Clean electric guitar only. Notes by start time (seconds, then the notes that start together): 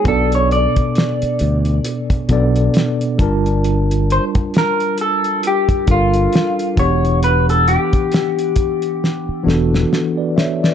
0.08 A4
0.35 C#5
0.52 D5
4.12 C5
4.58 A#4
5.01 A4
5.47 G4
5.91 F4
6.79 C#5
7.24 B4
7.50 A4
7.68 G4